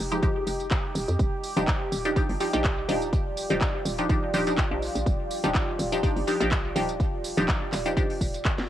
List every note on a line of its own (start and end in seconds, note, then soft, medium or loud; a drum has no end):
0.00 0.31 F1 loud
0.00 1.16 D#4 medium
0.00 8.69 G4 medium
0.12 0.20 F3 medium
0.12 0.20 G#3 medium
0.12 0.20 D#4 medium
0.12 0.20 G4 medium
0.12 closed hi-hat medium
0.12 tambourine soft
0.23 0.44 F3 medium
0.23 0.44 G#3 medium
0.23 0.44 D#4 medium
0.23 0.44 G4 medium
0.23 kick loud
0.23 closed hi-hat medium
0.23 tambourine soft
0.47 0.79 F1 medium
0.47 open hi-hat loud
0.47 tambourine medium
0.60 closed hi-hat medium
0.60 tambourine soft
0.71 kick loud
0.71 clap loud
0.71 closed hi-hat medium
0.71 tambourine soft
0.95 1.05 D#1 loud
0.95 open hi-hat loud
0.95 tambourine medium
1.08 1.17 F2 medium
1.08 closed hi-hat medium
1.08 tambourine soft
1.19 1.29 D#1 loud
1.19 8.69 F4 medium
1.19 8.69 D5 medium
1.19 kick loud
1.19 closed hi-hat medium
1.19 tambourine soft
1.44 open hi-hat loud
1.44 tambourine medium
1.57 1.65 D#1 loud
1.57 2.02 F3 medium
1.57 2.02 D4 medium
1.57 2.02 D#4 medium
1.57 2.02 G4 medium
1.57 closed hi-hat medium
1.57 tambourine soft
1.68 kick loud
1.68 clap loud
1.68 closed hi-hat medium
1.68 tambourine soft
1.92 2.24 D#1 loud
1.92 open hi-hat loud
1.92 tambourine medium
2.05 2.14 F3 medium
2.05 2.14 D4 medium
2.05 2.14 D#4 medium
2.05 2.14 G4 medium
2.05 closed hi-hat medium
2.05 tambourine soft
2.16 2.38 F3 medium
2.16 2.38 D4 medium
2.16 2.38 D#4 medium
2.16 2.38 G4 loud
2.16 kick loud
2.16 closed hi-hat medium
2.16 tambourine soft
2.29 2.38 G1 loud
2.29 open hi-hat medium
2.40 2.51 F3 medium
2.40 2.51 D4 medium
2.40 2.52 D#4 medium
2.40 2.52 G4 loud
2.40 open hi-hat loud
2.40 tambourine medium
2.53 2.85 A#1 loud
2.53 2.65 F3 medium
2.53 2.65 D4 medium
2.53 2.65 D#4 medium
2.53 2.65 G4 loud
2.53 closed hi-hat medium
2.53 tambourine soft
2.64 kick loud
2.64 clap loud
2.64 closed hi-hat medium
2.64 tambourine soft
2.89 3.45 D#1 loud
2.89 3.09 F3 loud
2.89 3.09 D4 medium
2.89 3.09 D#4 medium
2.89 3.09 G4 loud
2.89 open hi-hat loud
2.89 tambourine medium
3.02 closed hi-hat medium
3.02 tambourine soft
3.13 kick loud
3.13 closed hi-hat medium
3.13 tambourine soft
3.37 open hi-hat loud
3.37 tambourine medium
3.50 3.59 D#1 loud
3.50 3.95 F3 medium
3.50 3.96 D4 medium
3.50 3.96 D#4 medium
3.50 3.96 G4 loud
3.50 closed hi-hat medium
3.50 tambourine soft
3.61 kick loud
3.61 clap loud
3.61 closed hi-hat medium
3.61 tambourine soft
3.85 4.18 D#1 loud
3.85 open hi-hat loud
3.85 tambourine medium
3.98 4.07 F3 medium
3.98 4.07 D4 medium
3.98 4.07 D#4 medium
3.98 4.07 G4 medium
3.98 closed hi-hat medium
3.98 tambourine soft
4.10 4.31 F3 medium
4.10 4.31 D4 medium
4.10 4.31 D#4 medium
4.10 4.31 G4 medium
4.10 kick loud
4.10 closed hi-hat medium
4.10 tambourine soft
4.34 4.66 D#1 medium
4.34 4.45 F3 loud
4.34 4.45 D4 medium
4.34 4.45 D#4 medium
4.34 4.45 G4 loud
4.34 open hi-hat loud
4.34 tambourine medium
4.47 4.59 F3 medium
4.47 4.59 D4 medium
4.47 4.59 D#4 medium
4.47 4.59 G4 medium
4.47 closed hi-hat medium
4.47 tambourine soft
4.58 kick loud
4.58 clap loud
4.58 closed hi-hat medium
4.58 tambourine soft
4.71 4.89 A#1 medium
4.71 4.83 F3 medium
4.71 4.83 D4 medium
4.71 4.83 D#4 medium
4.71 4.83 G4 medium
4.82 open hi-hat loud
4.82 tambourine medium
4.95 5.04 A#1 medium
4.95 closed hi-hat medium
4.95 tambourine soft
5.06 5.16 D#1 loud
5.06 kick loud
5.06 closed hi-hat medium
5.06 tambourine soft
5.31 open hi-hat loud
5.31 tambourine medium
5.44 5.52 D#1 loud
5.44 5.89 F3 medium
5.44 5.89 D4 medium
5.44 5.89 D#4 medium
5.44 5.89 G4 loud
5.44 closed hi-hat medium
5.44 tambourine soft
5.55 kick loud
5.55 clap loud
5.55 closed hi-hat medium
5.55 tambourine soft
5.79 6.11 D#1 loud
5.79 open hi-hat loud
5.79 tambourine medium
5.92 6.01 F3 medium
5.92 6.01 D4 medium
5.92 6.01 D#4 medium
5.92 6.01 G4 medium
5.92 closed hi-hat medium
5.92 tambourine soft
6.03 6.25 F3 medium
6.03 6.25 D4 medium
6.03 6.25 D#4 medium
6.03 6.25 G4 medium
6.03 kick loud
6.03 closed hi-hat medium
6.03 tambourine soft
6.16 6.25 G1 loud
6.16 open hi-hat medium
6.27 6.39 F3 medium
6.27 6.39 D4 medium
6.27 6.39 D#4 medium
6.27 6.39 G4 loud
6.27 open hi-hat loud
6.27 tambourine medium
6.40 6.72 A#1 loud
6.40 6.52 F3 medium
6.40 6.52 D4 medium
6.40 6.52 D#4 medium
6.40 6.52 G4 loud
6.40 closed hi-hat medium
6.40 tambourine soft
6.51 kick loud
6.51 clap loud
6.51 closed hi-hat medium
6.51 tambourine soft
6.76 7.32 D#1 loud
6.76 6.96 F3 medium
6.76 6.96 D4 medium
6.76 6.96 D#4 medium
6.76 6.96 G4 loud
6.76 open hi-hat loud
6.76 tambourine medium
6.89 closed hi-hat medium
6.89 tambourine soft
7.00 kick loud
7.00 closed hi-hat medium
7.00 tambourine soft
7.24 open hi-hat loud
7.24 tambourine medium
7.37 7.46 D#1 loud
7.37 7.83 F3 medium
7.37 7.83 D4 medium
7.37 7.83 D#4 medium
7.37 7.83 G4 loud
7.37 closed hi-hat medium
7.37 tambourine soft
7.48 kick loud
7.48 clap loud
7.48 closed hi-hat medium
7.48 tambourine soft
7.72 8.05 D#1 loud
7.72 clap medium
7.72 open hi-hat loud
7.72 tambourine medium
7.86 7.94 F3 medium
7.86 7.94 D4 medium
7.86 7.94 D#4 medium
7.86 7.94 G4 medium
7.86 closed hi-hat medium
7.86 tambourine soft
7.97 8.18 F3 medium
7.97 8.18 D4 medium
7.97 8.18 D#4 medium
7.97 8.18 G4 loud
7.97 kick loud
7.97 closed hi-hat medium
7.97 tambourine soft
8.10 open hi-hat medium
8.21 8.65 D#1 medium
8.21 kick medium
8.21 open hi-hat loud
8.21 tambourine medium
8.34 closed hi-hat medium
8.34 tambourine soft
8.45 kick loud
8.45 clap loud
8.45 closed hi-hat medium
8.45 tambourine soft
8.58 snare medium